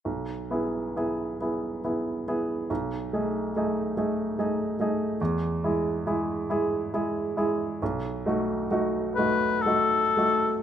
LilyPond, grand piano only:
\new Staff \with { instrumentName = "Grand piano" } { \time 3/4 \key e \major \tempo 4 = 69 b,,8 <b e' gis'>8 <b e' gis'>8 <b e' gis'>8 <b e' gis'>8 <b e' gis'>8 | b,,8 <a dis' gis'>8 <a dis' gis'>8 <a dis' gis'>8 <a dis' gis'>8 <a dis' gis'>8 | e,8 <gis e' gis'>8 <gis e' gis'>8 <gis e' gis'>8 <gis e' gis'>8 <gis e' gis'>8 | b,,8 <a dis' fis'>8 <a dis' fis'>8 <a dis' fis'>8 <a dis' fis'>8 <a dis' fis'>8 | }